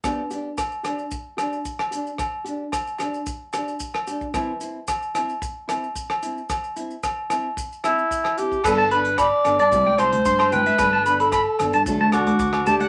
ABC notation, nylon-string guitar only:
X:1
M:4/4
L:1/8
Q:1/4=112
K:G
V:1 name="Nylon-string guitar"
[B,DG] [DG] z [DG] z [DG] z [DG] | z [DG] z [DG] z [DG] z [DG] | [E,CE] [CE] z [CE] z [CE] z [CE] | z [CE] z [CE] z [CE] z [CE] |
[G,B,DA] [B,DA] z [B,DA] [G,CEG] [CEG] z [CEG] | [G,DA] [B,DA] z [B,DA] [F,A,DA] [A,DA] z [A,DA] |]